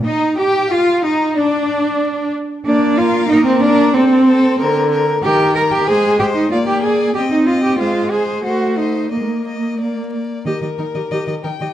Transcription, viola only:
\new Staff \with { instrumentName = "Viola" } { \time 2/4 \key ees \major \tempo 4 = 92 ees'8 g'8 f'8 ees'8 | d'4. r8 | bes4 bes4 | c'4 d4 |
ees4 aes4 | bes4 c'4 | aes4 a4 | bes4 bes4 |
g'16 g'16 ees'16 g'16 g'16 g'16 ees'16 g'16 | }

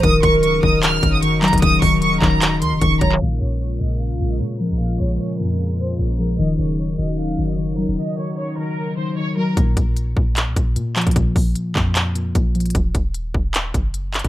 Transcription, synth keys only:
\new Staff \with { instrumentName = "Synth keys" } { \clef bass \time 4/4 \key bes \minor \tempo 4 = 151 ees8 ees4 ees4 ees8 ees8 ges8 | ees8 ees4 ees4 ees8 ees8 ges8 | bes,8 bes,4 bes,4 bes,8 bes,8 f8 | bes,8 bes,4 bes,4 bes,8 bes,8 f8 |
ees8 ees4 ees4 ees8 ees8 ges8 | ees8 ees4 ees4 ees8 ees8 ges8 | bes,8 bes,4 bes,4 bes,8 bes,8 f8 | bes,8 bes,4 bes,4 bes,8 bes,8 f8 |
r1 | }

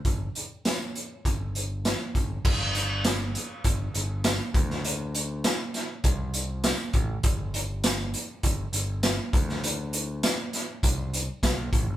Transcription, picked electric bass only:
\new Staff \with { instrumentName = "Picked electric bass" } { \clef bass \time 4/4 \key a \dorian \tempo 4 = 100 g,,8 r4. g,,4. g,,8 | g,,2 g,,8 g,,4 d,8~ | d,4. r8 c,4. a,,8 | g,,2 g,,8 g,,4 d,8~ |
d,4. r8 c,4 c,16 b,,16 a,,16 g,,16 | }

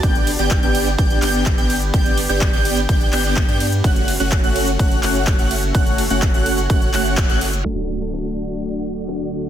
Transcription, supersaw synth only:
\new Staff \with { instrumentName = "Supersaw synth" } { \time 4/4 \key d \major \tempo 4 = 126 <b d' g' d'' g''>8 r16 <b d' g' d'' g''>8 <b d' g' d'' g''>8 r16 <b d' g' d'' g''>8 <b d' g' d'' g''>8. <b d' g' d'' g''>16 r8 | <b d' g' d'' g''>8 r16 <b d' g' d'' g''>8 <b d' g' d'' g''>8 r16 <b d' g' d'' g''>8 <b d' g' d'' g''>8. <b d' g' d'' g''>16 r8 | <a cis' fis' cis'' fis''>8 r16 <a cis' fis' cis'' fis''>8 <a cis' fis' cis'' fis''>8 r16 <a cis' fis' cis'' fis''>8 <a cis' fis' cis'' fis''>8. <a cis' fis' cis'' fis''>16 r8 | <a cis' fis' cis'' fis''>8 r16 <a cis' fis' cis'' fis''>8 <a cis' fis' cis'' fis''>8 r16 <a cis' fis' cis'' fis''>8 <a cis' fis' cis'' fis''>8. <a cis' fis' cis'' fis''>16 r8 |
<a d' fis' d'' fis''>1 | }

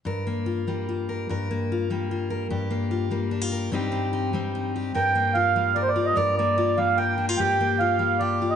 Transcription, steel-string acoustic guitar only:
\new Staff \with { instrumentName = "Steel-string acoustic guitar" } { \time 3/4 \key g \minor \tempo 4 = 148 << { bes'8 bes8 f'8 bes8 f'8 bes'8 | bes'8 bes8 f'8 bes8 f'8 bes'8 | g'8 bes8 f'8 bes8 d'16 f'16 bes'8 | <g c' ees' g'>8 c'8 ees'8 c'8 ees'8 g'8 |
bes'8 bes8 f'4 bes'8 f'8 | bes'8 bes8 f'4 bes'8 d'16 f'16 | g'8 bes8 f'4 g'8 f'8 | } \\ { g,4. g4. | g,4. g4. | g,4. g4. | g,4. g4. |
g,4. g4. | g,4. g4. | g,4. g4. | } >> }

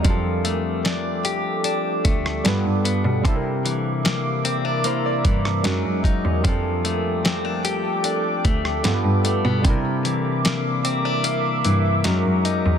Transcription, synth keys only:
\new Staff \with { instrumentName = "Synth keys" } { \time 4/4 \key f \major \tempo 4 = 75 << { r1 | r2 <e' c''>16 d''8 <d' bes'>8 r8. | r1 | r1 | } \\ { <g c' d' f' a'>2. <g b d' f' b'>4 | <g c' d' e' a' bes'>2. <aes des' ees' ges' bes'>4 | <g c' d' f' a'>2. <g b d' f' a' b'>4 | <g c' d' e' bes'>2. <aes des' ees' ges' bes'>4 | } >> }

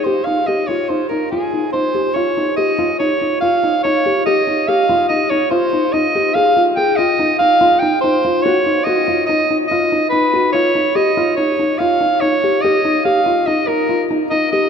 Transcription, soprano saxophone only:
\new Staff \with { instrumentName = "Soprano saxophone" } { \time 5/4 \key ees \mixolydian \tempo 4 = 143 c''8 f''8 ees''8 des''8 c''8 bes'8 aes'4 c''4 | des''4 ees''4 des''4 f''4 des''4 | ees''4 f''4 ees''8 des''8 c''4 ees''4 | f''4 g''8 ees''4 f''4 g''8 c''4 |
cis''4 dis''4 dis''8. r16 dis''4 b'4 | des''4 ees''4 des''4 f''4 des''4 | ees''4 f''4 ees''8 bes'4 r8 ees''8 ees''8 | }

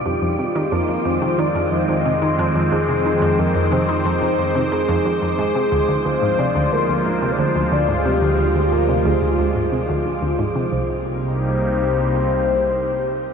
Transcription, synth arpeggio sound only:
\new Staff \with { instrumentName = "Synth arpeggio sound" } { \clef bass \time 4/4 \key c \minor \tempo 4 = 90 f,16 f,16 c16 ees16 f,16 f,16 f,16 c16 ees16 f,16 f,16 f,16 c16 ees16 f,16 f,16 | f,16 c16 ees16 f,16 f,16 f,16 c16 ees16 f,16 f,16 f,16 c16 ees16 f,16 f,16 f,16 | aes,16 c16 d,16 d,16 d,16 aes,16 c16 d,16 d,16 d,16 aes,16 c16 d,16 d,16 d,16 aes,16 | c16 d,16 d,16 d,16 aes,16 c16 d,16 d,16 d,16 aes,16 c16 d,16 d,16 d,16 aes,16 c16 |
c,8 r2. r8 | }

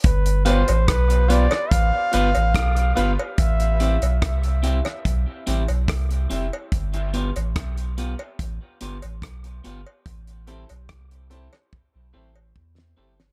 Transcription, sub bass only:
\new Staff \with { instrumentName = "Sub bass" } { \clef bass \time 4/4 \key a \minor \tempo 4 = 72 g,,8. a,,16 b,,8. r16 a,,16 r16 g,,16 a,,16 b,,8 g,,16 r16 | a,,8. b,,16 c,8. r16 b,,16 r16 a,,16 b,,16 c,8 f,,16 r16 | g,,8. a,,16 b,,8. r16 a,,16 r16 g,,16 a,,16 b,,8 g,,16 r16 | a,,8. b,,16 c,8. r8 b,,16 a,,8 e,8 g,,8 | }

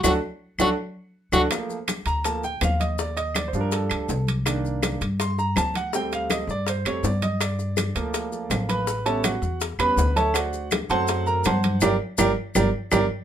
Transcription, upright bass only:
\new Staff \with { instrumentName = "Upright bass" } { \clef bass \time 4/4 \key g \minor \tempo 4 = 163 d,8 r4 d,8 r4. d,8 | r4. d,4. ees,4~ | ees,4. g,4 d,8 c,4~ | c,4. g,4. d,4~ |
d,4. g,4 r8 g,4~ | g,4. d,4. a,,4~ | a,,4. e,4 e,8 d,4~ | d,4. fis,4. g,4 |
g,,8 r8 g,,8 r8 g,,8 r8 g,,8 r8 | }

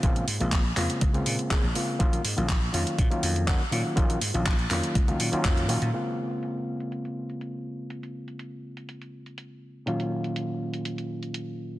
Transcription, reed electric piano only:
\new Staff \with { instrumentName = "Reed electric piano" } { \time 4/4 \key bes \minor \tempo 4 = 122 <des aes bes c' f'>8 r16 <des aes bes c' f'>8 r16 <des aes bes c' f'>8. <des aes bes c' f'>8. <des aes bes c' aes'>16 r16 <des aes bes c' f'>8 | <ees ges bes des' f'>8 r16 <ees ges bes des' f'>8 r16 <ees ges bes des' f'>8. <ees ges bes des' f'>8. <ees ges bes des' ges'>16 r16 <ees ges bes des' f'>8 | <ees ges bes des' f'>8 r16 <ees ges bes des' f'>8 r16 <ees ges bes des' f'>8. <ees ges bes des' f'>8 <ees ges bes des' f'>8. <ees ges bes des' f'>8 | <des aes bes c' f'>1~ |
<des aes bes c' f'>1 | <bes, ees ges bes des' f'>1 | }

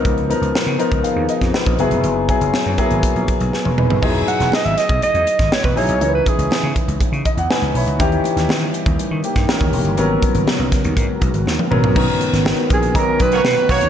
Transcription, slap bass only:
\new Staff \with { instrumentName = "Slap bass" } { \clef bass \time 4/4 \key e \lydian \tempo 4 = 121 cis,8. cis,16 r16 cis16 r16 cis,16 r16 dis,16 r16 eis,16 r16 ais,,16 fis,,16 e,,16 | fis,,8. fis,,16 r16 fis,16 r16 gis,,16 r16 ais,,16 r16 b,,16 r16 e,,16 e,,16 fis,,16 | e,,8 r16 e,,16 r16 gis,,16 r16 b,,16 r16 e,16 r16 gis,,16 r16 e,,16 ais,,16 b,,16 | cis,8 r16 cis,16 r16 cis16 r16 cis,16 r16 cis16 r16 e,16 r16 cis,16 b,,16 cis,16 |
dis,8 r16 dis,16 dis8 r16 dis,16 r16 dis16 r16 g,16 r16 dis,16 e,,16 g,,16 | gis,,8 r16 gis,,16 r16 b,,16 r16 dis,16 gis,16 r16 b,,16 gis,,16 dis,16 r16 gis,,16 ais,,16 | b,,16 r8 gis,,8 r16 ais,,8 b,,8 b,,8 b,16 r16 b,,16 dis,16 | }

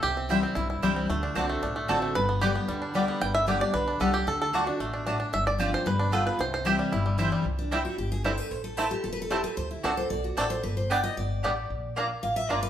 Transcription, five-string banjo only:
\new Staff \with { instrumentName = "Five-string banjo" } { \time 4/4 \key c \major \tempo 4 = 226 << { g'2 e'4. r8 | r2. a'4 | b'4 g'4. r4. | g''8 e''4 d''8 b'4 a'8 g'8 |
a'8 a'8 fis'4 r2 | e''8 d''4 c''8 b'4 a'8 b'8 | c''8 c''8 g'4 r2 | r4 <g c' e'>8 r4. <g c' e'>8 r8 |
r4 <a c' e'>8 r4. <a c' e'>8 r8 | r4 <a c' d'>8 r4. <a c' d'>8 r8 | r4 <g b d'>8 r4. <g b d'>8 r8 | r4 <bes d'>8 r4. <bes d'>8 r8 | } \\ { r8 c'8 g8 c'4 e'8 g8 c'8 | a8 d'8 c'8 a8 d'8 a4 a8 | r8 b4 b8 g8 d'8 g8 b8~ | b4 d'4. d'4. |
r4. d'8 a8 d'8 d'8 d'8 | r4 g'4 r8 d'4. | r4. g8 e'8 g8 e'8 g8 | r1 |
r1 | r1 | r1 | r1 | } >> }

